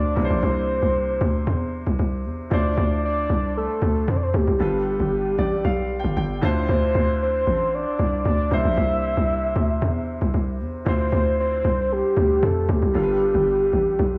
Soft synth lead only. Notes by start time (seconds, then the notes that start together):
Already playing: D5
0.44 C5
2.53 D5
3.05 D5
3.57 A4
4.09 C5
4.16 D5
4.23 C5
4.36 G4
6.70 C5
7.22 C5
7.74 D5
8.27 D5
8.53 E5
10.88 C5
11.40 C5
11.92 G4
12.44 A4
12.70 G4